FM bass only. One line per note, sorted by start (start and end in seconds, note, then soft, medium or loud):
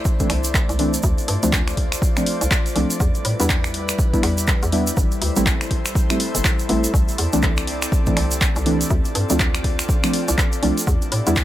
0.30 0.61 C2 medium
0.69 0.98 C2 loud
1.04 1.13 D2 loud
1.28 1.38 G2 medium
1.43 1.97 D2 medium
2.41 2.48 C2 medium
2.76 2.85 C2 medium
3.00 3.10 E2 loud
3.25 3.35 A2 medium
3.40 3.93 E2 medium
4.23 4.54 E2 medium
4.63 4.92 E2 loud
4.97 5.07 A1 loud
5.22 5.31 D2 medium
5.36 5.90 A1 medium
6.35 6.41 G1 medium
6.69 6.87 A1 loud
6.94 7.03 C2 loud
7.18 7.28 E2 medium
7.33 7.87 C2 medium
8.17 8.48 C2 medium
8.56 8.85 C2 loud
8.91 9.00 D2 loud
9.15 9.25 G2 medium
9.30 9.83 D2 medium
10.28 10.35 C2 medium
10.63 10.72 C2 medium
10.87 10.97 E2 loud
11.12 11.22 A2 medium
11.27 11.44 E2 medium